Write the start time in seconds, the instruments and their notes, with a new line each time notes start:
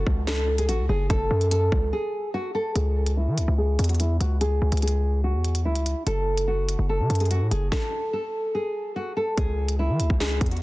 Already playing: nylon-string guitar F#4
0.07 808-style bass C#2, kick
0.27 nylon-string guitar A4, snare, closed hi-hat
0.58 nylon-string guitar G#4, closed hi-hat
0.69 808-style bass A1, nylon-string guitar F#4, closed hi-hat
0.79 808-style bass C#2
0.89 808-style bass F#1, nylon-string guitar G#4
1.10 808-style bass F#1, nylon-string guitar A4, kick, closed hi-hat
1.31 808-style bass F#2
1.41 closed hi-hat
1.51 nylon-string guitar A4, closed hi-hat
1.72 808-style bass C#2, kick
1.93 nylon-string guitar G#4
2.34 nylon-string guitar F#4
2.55 nylon-string guitar A4
2.76 808-style bass C#2, nylon-string guitar G#4, closed hi-hat
3.06 closed hi-hat
3.17 nylon-string guitar E4
3.27 808-style bass E3
3.38 808-style bass C#2, closed hi-hat
3.48 808-style bass C#2
3.58 nylon-string guitar G#4
3.79 808-style bass E2, closed hi-hat
3.84 closed hi-hat
3.89 nylon-string guitar F#4, closed hi-hat
3.95 closed hi-hat
4.00 nylon-string guitar E4, closed hi-hat
4.20 808-style bass C#2, nylon-string guitar F#4, closed hi-hat
4.41 nylon-string guitar G#4, closed hi-hat
4.62 808-style bass C#2
4.72 808-style bass C#2, closed hi-hat
4.77 closed hi-hat
4.82 nylon-string guitar G#4, closed hi-hat
4.88 closed hi-hat
5.24 nylon-string guitar F#4
5.34 808-style bass E2
5.45 closed hi-hat
5.55 closed hi-hat
5.65 808-style bass C#2, nylon-string guitar E4
5.75 closed hi-hat
5.86 closed hi-hat
6.07 808-style bass F#1, nylon-string guitar A4, closed hi-hat
6.38 closed hi-hat
6.48 nylon-string guitar F#4
6.69 closed hi-hat
6.79 808-style bass F#1
6.89 nylon-string guitar A4
7.00 808-style bass C#3
7.10 808-style bass F#2, closed hi-hat
7.15 closed hi-hat
7.20 nylon-string guitar G#4, closed hi-hat
7.25 closed hi-hat
7.31 nylon-string guitar F#4, closed hi-hat
7.41 808-style bass A2
7.51 808-style bass F#1, nylon-string guitar G#4, closed hi-hat
7.72 nylon-string guitar A4, kick, snare
8.13 nylon-string guitar A4
8.55 nylon-string guitar G#4
8.96 nylon-string guitar F#4
9.17 nylon-string guitar A4
9.38 808-style bass C#2, nylon-string guitar G#4, kick, closed hi-hat
9.69 closed hi-hat
9.79 nylon-string guitar E4
9.89 808-style bass E3
10.00 808-style bass C#2, closed hi-hat
10.10 808-style bass C#2, kick
10.20 nylon-string guitar G#4, snare
10.41 808-style bass E2, kick, closed hi-hat
10.46 closed hi-hat
10.51 nylon-string guitar F#4, closed hi-hat
10.57 closed hi-hat